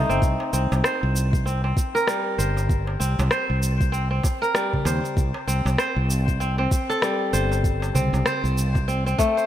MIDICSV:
0, 0, Header, 1, 5, 480
1, 0, Start_track
1, 0, Tempo, 618557
1, 170, Time_signature, 4, 2, 24, 8
1, 7343, End_track
2, 0, Start_track
2, 0, Title_t, "Kora"
2, 0, Program_c, 0, 46
2, 0, Note_on_c, 0, 57, 78
2, 0, Note_on_c, 0, 63, 72
2, 0, Note_on_c, 0, 72, 93
2, 73, Note_on_c, 0, 60, 98
2, 409, Note_off_c, 0, 60, 0
2, 412, Note_on_c, 0, 60, 66
2, 517, Note_off_c, 0, 72, 0
2, 649, Note_on_c, 0, 72, 99
2, 1127, Note_off_c, 0, 60, 0
2, 1130, Note_on_c, 0, 60, 74
2, 1190, Note_off_c, 0, 63, 0
2, 1241, Note_off_c, 0, 57, 0
2, 1268, Note_off_c, 0, 60, 0
2, 1271, Note_on_c, 0, 60, 63
2, 1511, Note_on_c, 0, 70, 95
2, 1571, Note_off_c, 0, 72, 0
2, 1608, Note_on_c, 0, 55, 75
2, 1848, Note_on_c, 0, 72, 68
2, 2322, Note_off_c, 0, 60, 0
2, 2325, Note_on_c, 0, 60, 65
2, 2499, Note_off_c, 0, 70, 0
2, 2563, Note_off_c, 0, 72, 0
2, 2566, Note_on_c, 0, 72, 98
2, 3040, Note_off_c, 0, 60, 0
2, 3043, Note_on_c, 0, 60, 81
2, 3183, Note_off_c, 0, 60, 0
2, 3186, Note_on_c, 0, 60, 65
2, 3424, Note_off_c, 0, 55, 0
2, 3428, Note_on_c, 0, 70, 102
2, 3488, Note_off_c, 0, 72, 0
2, 3526, Note_on_c, 0, 55, 75
2, 3772, Note_on_c, 0, 72, 69
2, 4049, Note_off_c, 0, 55, 0
2, 4246, Note_off_c, 0, 60, 0
2, 4249, Note_on_c, 0, 60, 70
2, 4416, Note_off_c, 0, 70, 0
2, 4487, Note_off_c, 0, 72, 0
2, 4490, Note_on_c, 0, 72, 99
2, 4965, Note_off_c, 0, 60, 0
2, 4968, Note_on_c, 0, 60, 77
2, 5107, Note_off_c, 0, 60, 0
2, 5110, Note_on_c, 0, 60, 69
2, 5351, Note_on_c, 0, 69, 99
2, 5412, Note_off_c, 0, 72, 0
2, 5448, Note_on_c, 0, 55, 81
2, 5688, Note_on_c, 0, 72, 72
2, 6166, Note_off_c, 0, 60, 0
2, 6169, Note_on_c, 0, 60, 70
2, 6373, Note_off_c, 0, 69, 0
2, 6405, Note_off_c, 0, 72, 0
2, 6408, Note_on_c, 0, 72, 97
2, 6886, Note_off_c, 0, 60, 0
2, 6890, Note_on_c, 0, 60, 71
2, 7030, Note_off_c, 0, 60, 0
2, 7033, Note_on_c, 0, 60, 66
2, 7128, Note_on_c, 0, 57, 97
2, 7264, Note_off_c, 0, 55, 0
2, 7269, Note_off_c, 0, 72, 0
2, 7272, Note_on_c, 0, 72, 72
2, 7343, Note_off_c, 0, 57, 0
2, 7343, Note_off_c, 0, 60, 0
2, 7343, Note_off_c, 0, 72, 0
2, 7343, End_track
3, 0, Start_track
3, 0, Title_t, "Fretless electric bass"
3, 0, Program_c, 1, 35
3, 71, Note_on_c, 1, 31, 81
3, 144, Note_off_c, 1, 31, 0
3, 169, Note_on_c, 1, 36, 92
3, 276, Note_off_c, 1, 36, 0
3, 411, Note_on_c, 1, 36, 79
3, 517, Note_off_c, 1, 36, 0
3, 557, Note_on_c, 1, 36, 87
3, 627, Note_off_c, 1, 36, 0
3, 799, Note_on_c, 1, 36, 85
3, 1334, Note_off_c, 1, 36, 0
3, 1851, Note_on_c, 1, 31, 78
3, 2291, Note_off_c, 1, 31, 0
3, 2330, Note_on_c, 1, 36, 73
3, 2437, Note_off_c, 1, 36, 0
3, 2474, Note_on_c, 1, 36, 95
3, 2546, Note_off_c, 1, 36, 0
3, 2714, Note_on_c, 1, 36, 82
3, 3251, Note_off_c, 1, 36, 0
3, 3767, Note_on_c, 1, 39, 96
3, 3875, Note_off_c, 1, 39, 0
3, 4010, Note_on_c, 1, 36, 95
3, 4117, Note_off_c, 1, 36, 0
3, 4248, Note_on_c, 1, 36, 73
3, 4356, Note_off_c, 1, 36, 0
3, 4387, Note_on_c, 1, 36, 90
3, 4463, Note_off_c, 1, 36, 0
3, 4628, Note_on_c, 1, 36, 90
3, 5168, Note_off_c, 1, 36, 0
3, 5689, Note_on_c, 1, 31, 89
3, 6130, Note_off_c, 1, 31, 0
3, 6166, Note_on_c, 1, 36, 77
3, 6274, Note_off_c, 1, 36, 0
3, 6308, Note_on_c, 1, 36, 97
3, 6383, Note_off_c, 1, 36, 0
3, 6547, Note_on_c, 1, 36, 89
3, 7088, Note_off_c, 1, 36, 0
3, 7343, End_track
4, 0, Start_track
4, 0, Title_t, "Darbuka"
4, 77, Note_on_c, 9, 62, 33
4, 154, Note_off_c, 9, 62, 0
4, 312, Note_on_c, 9, 62, 62
4, 389, Note_off_c, 9, 62, 0
4, 559, Note_on_c, 9, 63, 57
4, 637, Note_off_c, 9, 63, 0
4, 1274, Note_on_c, 9, 62, 48
4, 1351, Note_off_c, 9, 62, 0
4, 1513, Note_on_c, 9, 62, 47
4, 1591, Note_off_c, 9, 62, 0
4, 1993, Note_on_c, 9, 62, 31
4, 1995, Note_on_c, 9, 63, 29
4, 2071, Note_off_c, 9, 62, 0
4, 2073, Note_off_c, 9, 63, 0
4, 2230, Note_on_c, 9, 62, 56
4, 2308, Note_off_c, 9, 62, 0
4, 2479, Note_on_c, 9, 63, 61
4, 2557, Note_off_c, 9, 63, 0
4, 3286, Note_on_c, 9, 62, 50
4, 3291, Note_on_c, 9, 63, 33
4, 3364, Note_off_c, 9, 62, 0
4, 3368, Note_off_c, 9, 63, 0
4, 3674, Note_on_c, 9, 64, 66
4, 3751, Note_off_c, 9, 64, 0
4, 3766, Note_on_c, 9, 63, 76
4, 3843, Note_off_c, 9, 63, 0
4, 3910, Note_on_c, 9, 62, 34
4, 3988, Note_off_c, 9, 62, 0
4, 4147, Note_on_c, 9, 62, 72
4, 4224, Note_off_c, 9, 62, 0
4, 4393, Note_on_c, 9, 63, 58
4, 4470, Note_off_c, 9, 63, 0
4, 5108, Note_on_c, 9, 62, 54
4, 5186, Note_off_c, 9, 62, 0
4, 5355, Note_on_c, 9, 62, 56
4, 5433, Note_off_c, 9, 62, 0
4, 5832, Note_on_c, 9, 63, 33
4, 5834, Note_on_c, 9, 62, 35
4, 5910, Note_off_c, 9, 63, 0
4, 5911, Note_off_c, 9, 62, 0
4, 6071, Note_on_c, 9, 62, 66
4, 6148, Note_off_c, 9, 62, 0
4, 6173, Note_on_c, 9, 64, 76
4, 6251, Note_off_c, 9, 64, 0
4, 6314, Note_on_c, 9, 63, 62
4, 6392, Note_off_c, 9, 63, 0
4, 6788, Note_on_c, 9, 63, 32
4, 6866, Note_off_c, 9, 63, 0
4, 7129, Note_on_c, 9, 63, 36
4, 7136, Note_on_c, 9, 62, 58
4, 7206, Note_off_c, 9, 63, 0
4, 7214, Note_off_c, 9, 62, 0
4, 7343, End_track
5, 0, Start_track
5, 0, Title_t, "Drums"
5, 80, Note_on_c, 9, 69, 33
5, 158, Note_off_c, 9, 69, 0
5, 170, Note_on_c, 9, 36, 119
5, 176, Note_on_c, 9, 69, 41
5, 248, Note_off_c, 9, 36, 0
5, 254, Note_off_c, 9, 69, 0
5, 415, Note_on_c, 9, 69, 73
5, 493, Note_off_c, 9, 69, 0
5, 561, Note_on_c, 9, 69, 27
5, 638, Note_off_c, 9, 69, 0
5, 653, Note_on_c, 9, 37, 88
5, 661, Note_on_c, 9, 69, 42
5, 731, Note_off_c, 9, 37, 0
5, 739, Note_off_c, 9, 69, 0
5, 900, Note_on_c, 9, 69, 71
5, 978, Note_off_c, 9, 69, 0
5, 1033, Note_on_c, 9, 36, 103
5, 1043, Note_on_c, 9, 69, 30
5, 1111, Note_off_c, 9, 36, 0
5, 1121, Note_off_c, 9, 69, 0
5, 1142, Note_on_c, 9, 69, 45
5, 1219, Note_off_c, 9, 69, 0
5, 1371, Note_on_c, 9, 36, 102
5, 1379, Note_on_c, 9, 69, 68
5, 1449, Note_off_c, 9, 36, 0
5, 1457, Note_off_c, 9, 69, 0
5, 1523, Note_on_c, 9, 69, 32
5, 1601, Note_off_c, 9, 69, 0
5, 1610, Note_on_c, 9, 37, 85
5, 1618, Note_on_c, 9, 69, 45
5, 1688, Note_off_c, 9, 37, 0
5, 1695, Note_off_c, 9, 69, 0
5, 1858, Note_on_c, 9, 69, 76
5, 1935, Note_off_c, 9, 69, 0
5, 2000, Note_on_c, 9, 69, 30
5, 2077, Note_off_c, 9, 69, 0
5, 2091, Note_on_c, 9, 36, 107
5, 2098, Note_on_c, 9, 69, 37
5, 2168, Note_off_c, 9, 36, 0
5, 2175, Note_off_c, 9, 69, 0
5, 2336, Note_on_c, 9, 69, 74
5, 2414, Note_off_c, 9, 69, 0
5, 2477, Note_on_c, 9, 69, 28
5, 2555, Note_off_c, 9, 69, 0
5, 2567, Note_on_c, 9, 37, 89
5, 2574, Note_on_c, 9, 69, 39
5, 2644, Note_off_c, 9, 37, 0
5, 2652, Note_off_c, 9, 69, 0
5, 2815, Note_on_c, 9, 69, 70
5, 2893, Note_off_c, 9, 69, 0
5, 2953, Note_on_c, 9, 36, 96
5, 2958, Note_on_c, 9, 69, 31
5, 3031, Note_off_c, 9, 36, 0
5, 3035, Note_off_c, 9, 69, 0
5, 3055, Note_on_c, 9, 69, 40
5, 3133, Note_off_c, 9, 69, 0
5, 3291, Note_on_c, 9, 36, 97
5, 3295, Note_on_c, 9, 69, 66
5, 3368, Note_off_c, 9, 36, 0
5, 3373, Note_off_c, 9, 69, 0
5, 3440, Note_on_c, 9, 69, 31
5, 3517, Note_off_c, 9, 69, 0
5, 3528, Note_on_c, 9, 37, 87
5, 3536, Note_on_c, 9, 69, 41
5, 3606, Note_off_c, 9, 37, 0
5, 3614, Note_off_c, 9, 69, 0
5, 3672, Note_on_c, 9, 36, 52
5, 3750, Note_off_c, 9, 36, 0
5, 3776, Note_on_c, 9, 69, 74
5, 3853, Note_off_c, 9, 69, 0
5, 3920, Note_on_c, 9, 69, 30
5, 3998, Note_off_c, 9, 69, 0
5, 4010, Note_on_c, 9, 36, 108
5, 4018, Note_on_c, 9, 69, 37
5, 4088, Note_off_c, 9, 36, 0
5, 4096, Note_off_c, 9, 69, 0
5, 4256, Note_on_c, 9, 69, 69
5, 4334, Note_off_c, 9, 69, 0
5, 4400, Note_on_c, 9, 69, 26
5, 4478, Note_off_c, 9, 69, 0
5, 4488, Note_on_c, 9, 37, 87
5, 4496, Note_on_c, 9, 69, 39
5, 4566, Note_off_c, 9, 37, 0
5, 4574, Note_off_c, 9, 69, 0
5, 4736, Note_on_c, 9, 69, 66
5, 4814, Note_off_c, 9, 69, 0
5, 4873, Note_on_c, 9, 36, 89
5, 4878, Note_on_c, 9, 69, 30
5, 4950, Note_off_c, 9, 36, 0
5, 4956, Note_off_c, 9, 69, 0
5, 4975, Note_on_c, 9, 69, 39
5, 5052, Note_off_c, 9, 69, 0
5, 5210, Note_on_c, 9, 36, 99
5, 5214, Note_on_c, 9, 69, 68
5, 5288, Note_off_c, 9, 36, 0
5, 5291, Note_off_c, 9, 69, 0
5, 5360, Note_on_c, 9, 69, 33
5, 5437, Note_off_c, 9, 69, 0
5, 5449, Note_on_c, 9, 37, 94
5, 5457, Note_on_c, 9, 69, 39
5, 5527, Note_off_c, 9, 37, 0
5, 5534, Note_off_c, 9, 69, 0
5, 5693, Note_on_c, 9, 69, 74
5, 5771, Note_off_c, 9, 69, 0
5, 5839, Note_on_c, 9, 69, 32
5, 5916, Note_off_c, 9, 69, 0
5, 5930, Note_on_c, 9, 36, 107
5, 5936, Note_on_c, 9, 69, 38
5, 6008, Note_off_c, 9, 36, 0
5, 6013, Note_off_c, 9, 69, 0
5, 6077, Note_on_c, 9, 69, 25
5, 6155, Note_off_c, 9, 69, 0
5, 6175, Note_on_c, 9, 69, 75
5, 6252, Note_off_c, 9, 69, 0
5, 6317, Note_on_c, 9, 69, 28
5, 6395, Note_off_c, 9, 69, 0
5, 6407, Note_on_c, 9, 37, 93
5, 6415, Note_on_c, 9, 69, 41
5, 6485, Note_off_c, 9, 37, 0
5, 6492, Note_off_c, 9, 69, 0
5, 6558, Note_on_c, 9, 69, 27
5, 6635, Note_off_c, 9, 69, 0
5, 6656, Note_on_c, 9, 69, 70
5, 6734, Note_off_c, 9, 69, 0
5, 6792, Note_on_c, 9, 36, 98
5, 6797, Note_on_c, 9, 69, 28
5, 6870, Note_off_c, 9, 36, 0
5, 6874, Note_off_c, 9, 69, 0
5, 6898, Note_on_c, 9, 69, 42
5, 6975, Note_off_c, 9, 69, 0
5, 7040, Note_on_c, 9, 69, 30
5, 7118, Note_off_c, 9, 69, 0
5, 7129, Note_on_c, 9, 36, 93
5, 7136, Note_on_c, 9, 69, 67
5, 7207, Note_off_c, 9, 36, 0
5, 7213, Note_off_c, 9, 69, 0
5, 7279, Note_on_c, 9, 69, 31
5, 7343, Note_off_c, 9, 69, 0
5, 7343, End_track
0, 0, End_of_file